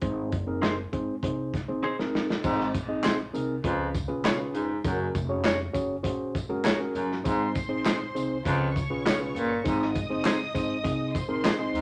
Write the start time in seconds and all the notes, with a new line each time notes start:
0.02 G#1 G#2 C4 D#4 G#4 C5, kick, closed hi-hat
0.32 F#1, kick, closed hi-hat
0.47 C4 D#4 G#4 A#4
0.62 C4 D#4 G#4 C5, snare, closed hi-hat
0.93 G#1 C4 D#4 G#4 C5, kick, closed hi-hat
1.22 C2 C4 D#4 G#4 C5, kick, closed hi-hat
1.54 kick, snare, closed hi-hat
1.68 A#1 C4 D#4 G#4 C5
1.83 C4 D#4 G#4 C5
1.99 C4 D#4 G#4 A#4, snare
2.14 G1, snare
2.30 snare
2.44 G#1 G#2 C4 D#4 G#4 C5, kick, crash, tambourine
2.60 snare
2.74 A#1, kick, closed hi-hat, tambourine
2.88 C4 D#4 G#4 D#5
3.03 C4 D#4 G#4 C5, snare, clap, closed hi-hat, tambourine
3.34 C2 C4 D#4 G#4 A#4, closed hi-hat, tambourine
3.64 C#2 F2 C#3 C#4 F4 G#4 B4, kick, closed hi-hat
3.94 kick, closed hi-hat, tambourine
4.08 B1 C#4 F4 G#4 B4
4.24 B3 F4 G#4 C#5, snare, clap, closed hi-hat, tambourine
4.38 C#4 F4 G#4 B4
4.54 F1 G#2, closed hi-hat, tambourine
4.84 F#1 F#2 C#4 F#4 G#4 A#4, kick, closed hi-hat, tambourine
5.15 F1, kick, closed hi-hat, tambourine
5.29 C#4 F#4 G#4 C#5
5.44 A#3 F#4 G#4 C#5, snare, clap, closed hi-hat, tambourine
5.73 F#1 C#4 F#4 G#4 C#5, kick, closed hi-hat, tambourine
6.03 A#1 C#4 F#4 G#4 C5, kick, closed hi-hat, tambourine
6.35 kick, closed hi-hat, tambourine
6.49 G#1 C#4 F#4 G#4 A#4
6.64 A#3 F#4 G#4 C#5, snare, clap, closed hi-hat, tambourine
6.79 C#4 F#4 G#4 A#4
6.95 G1 F#2, closed hi-hat, tambourine
7.12 snare
7.24 G#1 G#2 C4 D#4 G#4 C5 C6, kick, closed hi-hat, tambourine
7.55 A#1, kick, closed hi-hat, tambourine
7.69 C4 D#4 G#4 C5
7.85 C4 D#4 G#4 C5, snare, clap, closed hi-hat, tambourine
8.15 C2 C4 D#4 G#4 C5, closed hi-hat, tambourine
8.45 C#2 F2 C#3 C#4 F4 G#4 B4 C#5 C#6, kick, closed hi-hat, tambourine
8.76 kick, closed hi-hat, tambourine
8.90 B1 C#4 F4 G#4 B4
9.06 B3 F4 G#4 C#5, snare, clap, closed hi-hat, tambourine
9.20 C#4 F4 G#4 B4
9.35 G1 A#2, closed hi-hat, tambourine
9.64 G#1 G#2 C4 D#4 G#4 C5 D#5 D#6, kick, closed hi-hat, tambourine
9.82 snare
9.95 kick, closed hi-hat, tambourine
10.10 F#1 C4 D#4 G#4 C5
10.25 C4 D#4 G#4 C5, snare, clap, closed hi-hat, tambourine
10.54 G#1 C4 D#4 G#4 C5, kick, closed hi-hat, tambourine
10.83 C2 C4 D#4 G#4 D#5, kick, closed hi-hat, tambourine
11.14 C5 C6, kick, closed hi-hat, tambourine
11.28 A#1 C4 D#4 G#4 A#4
11.44 C4 D#4 G#4 C5, snare, clap, closed hi-hat, tambourine
11.59 C4 D#4 G#4 D#5
11.73 D2 G#2, closed hi-hat, tambourine